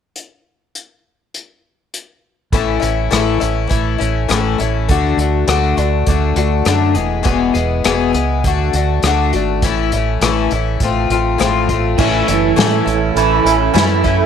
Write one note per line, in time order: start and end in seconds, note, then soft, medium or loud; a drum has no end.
0.16 closed hi-hat soft
0.75 closed hi-hat soft
1.34 closed hi-hat medium
1.94 closed hi-hat medium
2.52 2.81 A1 medium
2.52 2.82 A2 medium
2.52 2.82 E3 medium
2.52 2.81 A3 medium
2.52 2.80 C#4 medium
2.52 2.79 E4 medium
2.52 kick loud
2.52 closed hi-hat medium
2.80 3.11 A1 medium
2.80 3.11 A3 soft
2.80 3.11 C#4 soft
2.80 3.11 E4 soft
2.80 closed hi-hat medium
3.11 3.40 A1 medium
3.11 3.41 A2 medium
3.11 3.41 E3 medium
3.11 3.41 A3 medium
3.11 3.40 C#4 medium
3.11 3.39 E4 medium
3.11 cross-stick loud
3.11 closed hi-hat medium
3.40 3.70 A1 medium
3.40 3.68 A3 soft
3.40 3.68 C#4 medium
3.40 3.69 E4 medium
3.40 closed hi-hat medium
3.67 3.99 A1 medium
3.67 3.99 E3 medium
3.67 4.00 A3 medium
3.67 3.98 C#4 medium
3.67 3.97 E4 medium
3.67 kick medium
3.67 closed hi-hat medium
3.98 4.29 A1 medium
3.98 4.28 A3 soft
3.98 4.28 C#4 soft
3.98 4.29 E4 medium
3.98 closed hi-hat medium
4.29 4.58 A1 medium
4.29 4.59 A2 medium
4.29 4.59 E3 medium
4.29 4.59 A3 medium
4.29 4.59 C#4 medium
4.29 4.57 E4 medium
4.29 cross-stick loud
4.29 closed hi-hat medium
4.58 4.88 A1 medium
4.58 4.89 A3 soft
4.58 4.89 C#4 soft
4.58 4.89 E4 medium
4.58 closed hi-hat medium
4.89 5.16 D2 medium
4.89 5.19 D3 medium
4.89 5.19 A3 medium
4.89 5.18 D4 medium
4.89 5.16 F#4 medium
4.89 kick medium
4.89 closed hi-hat medium
5.17 5.46 D2 medium
5.17 5.47 D4 soft
5.17 5.47 F#4 soft
5.17 closed hi-hat medium
5.21 5.47 A3 soft
5.47 5.76 D2 medium
5.47 5.78 D3 medium
5.47 5.78 A3 medium
5.47 5.77 D4 medium
5.47 5.76 F#4 medium
5.47 cross-stick medium
5.47 closed hi-hat medium
5.77 6.06 D2 medium
5.77 6.06 A3 soft
5.77 6.08 D4 soft
5.77 6.07 F#4 soft
5.77 closed hi-hat medium
6.06 6.36 D2 medium
6.06 6.37 D3 medium
6.06 6.37 A3 medium
6.06 6.36 D4 medium
6.06 6.36 F#4 medium
6.06 kick medium
6.06 closed hi-hat medium
6.36 6.65 D2 medium
6.36 6.65 A3 soft
6.36 6.66 D4 soft
6.36 6.67 F#4 medium
6.36 closed hi-hat medium
6.65 6.95 F#2 medium
6.65 6.96 D3 medium
6.65 6.96 A3 medium
6.65 6.95 D4 medium
6.65 6.94 F#4 medium
6.65 cross-stick loud
6.65 closed hi-hat medium
6.94 7.24 E1 medium
6.94 7.22 E3 soft
6.94 7.23 G#3 soft
6.94 7.23 B3 soft
6.94 7.24 G#4 soft
6.94 closed hi-hat medium
7.23 7.54 E1 medium
7.23 7.54 E2 medium
7.23 7.54 B2 medium
7.23 7.54 E3 medium
7.23 7.54 G#3 medium
7.23 7.54 B3 medium
7.23 7.53 G#4 medium
7.23 kick medium
7.23 closed hi-hat medium
7.54 7.83 E1 medium
7.54 7.84 E3 soft
7.54 7.84 G#3 soft
7.54 7.84 B3 soft
7.54 7.84 G#4 soft
7.54 closed hi-hat medium
7.84 8.13 E1 medium
7.84 8.14 E2 medium
7.84 8.14 B2 medium
7.84 8.15 E3 medium
7.84 8.13 G#3 medium
7.84 8.13 B3 loud
7.84 8.12 G#4 medium
7.84 cross-stick loud
7.84 closed hi-hat medium
8.13 8.43 C#2 medium
8.13 8.44 E3 soft
8.13 8.44 G#3 soft
8.13 8.44 B3 soft
8.13 8.43 G#4 soft
8.13 closed hi-hat medium
8.44 8.73 D2 medium
8.44 8.74 D3 medium
8.44 8.75 A3 medium
8.44 8.75 D4 medium
8.44 8.74 F#4 medium
8.44 kick medium
8.44 closed hi-hat medium
8.73 9.02 D2 medium
8.73 9.04 D4 soft
8.73 9.04 F#4 soft
8.73 closed hi-hat medium
8.78 9.05 A3 soft
9.03 9.31 D2 medium
9.03 9.34 D3 medium
9.03 9.34 A3 medium
9.03 9.34 D4 medium
9.03 cross-stick loud
9.03 closed hi-hat medium
9.07 9.32 F#4 medium
9.33 9.62 G#1 medium
9.33 9.63 A3 soft
9.33 9.63 D4 soft
9.33 9.62 F#4 medium
9.33 closed hi-hat medium
9.62 9.91 A1 medium
9.62 9.92 A2 medium
9.62 9.92 E3 medium
9.62 9.93 A3 medium
9.62 9.93 C#4 medium
9.62 9.91 E4 medium
9.62 kick medium
9.62 closed hi-hat medium
9.92 10.21 A1 medium
9.92 10.22 C#4 soft
9.92 10.22 E4 soft
9.92 closed hi-hat medium
9.96 10.21 A3 soft
10.21 10.49 A1 medium
10.21 10.51 A2 medium
10.21 10.51 E3 medium
10.21 10.51 A3 medium
10.21 10.51 C#4 medium
10.21 10.51 E4 medium
10.21 cross-stick loud
10.21 closed hi-hat medium
10.51 10.79 A1 medium
10.51 10.81 E4 medium
10.51 closed hi-hat medium
10.55 10.82 A3 soft
10.55 10.82 C#4 soft
10.80 11.09 A1 medium
10.80 11.10 F3 medium
10.80 11.11 A3 medium
10.80 11.11 C4 medium
10.80 11.10 F4 medium
10.80 kick medium
10.80 closed hi-hat medium
11.10 11.38 A1 medium
11.10 11.39 C4 soft
11.10 11.39 F4 medium
11.10 closed hi-hat medium
11.14 11.39 A3 soft
11.38 11.96 A1 medium
11.38 11.68 A2 medium
11.38 11.68 F3 medium
11.38 11.69 A3 medium
11.38 11.69 C4 medium
11.38 11.68 F4 medium
11.38 cross-stick medium
11.38 closed hi-hat medium
11.69 11.99 C4 soft
11.69 11.98 F4 medium
11.69 kick medium
11.69 closed hi-hat medium
11.73 11.97 A3 soft
11.98 12.22 A1 medium
11.98 12.27 A2 medium
11.98 12.28 E3 medium
11.98 12.28 A3 medium
11.98 14.26 C#4 medium
11.98 12.28 C#4 medium
11.98 14.26 E4 medium
11.98 12.27 E4 medium
11.98 14.26 A4 medium
11.98 kick loud
11.98 crash medium
12.27 12.51 F#1 medium
12.27 13.74 E3 medium
12.27 12.56 A3 soft
12.27 12.57 C#4 soft
12.27 12.57 E4 medium
12.27 closed hi-hat medium
12.56 12.86 A2 medium
12.56 12.80 A2 medium
12.56 12.86 E3 medium
12.56 12.87 A3 medium
12.56 12.86 C#4 medium
12.56 12.84 E4 medium
12.56 snare loud
12.56 closed hi-hat medium
12.86 13.10 A1 medium
12.86 13.15 A3 soft
12.86 13.16 C#4 soft
12.86 13.15 E4 medium
12.86 closed hi-hat medium
13.15 13.39 A1 medium
13.15 13.45 E3 medium
13.15 13.46 A3 medium
13.15 13.46 C#4 medium
13.15 13.45 E4 medium
13.15 closed hi-hat medium
13.45 13.68 A1 medium
13.45 13.74 C#4 soft
13.45 13.74 E4 medium
13.45 closed hi-hat medium
13.49 13.74 A3 soft
13.74 14.21 F#2 medium
13.74 14.04 A2 medium
13.74 14.04 E3 medium
13.74 14.04 A3 medium
13.74 14.04 C#4 medium
13.74 14.02 E4 medium
13.74 snare loud
13.74 closed hi-hat medium
14.04 14.26 A3 soft
14.04 14.26 C#4 medium
14.04 14.26 E4 medium
14.04 kick medium
14.04 closed hi-hat medium